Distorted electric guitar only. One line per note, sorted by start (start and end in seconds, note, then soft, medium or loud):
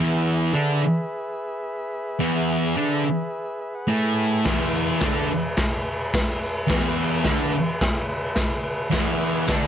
0.00 0.53 E2 medium
0.00 0.54 E3 loud
0.53 0.80 D3 loud
0.53 0.81 D4 loud
2.19 2.75 E2 medium
2.19 2.76 E3 medium
2.76 3.04 D3 medium
2.76 3.04 D4 medium
3.87 4.43 A2 medium
3.87 4.44 A3 medium
4.45 5.00 E2 medium
4.45 5.01 E3 loud
5.02 5.28 D3 medium
5.02 5.29 D4 loud
6.67 7.23 E2 loud
6.67 7.24 E3 loud
7.24 7.52 D3 loud
7.24 7.53 D4 loud
8.90 9.47 E2 loud
8.90 9.47 E3 loud
9.47 9.67 D3 loud
9.47 9.67 D4 loud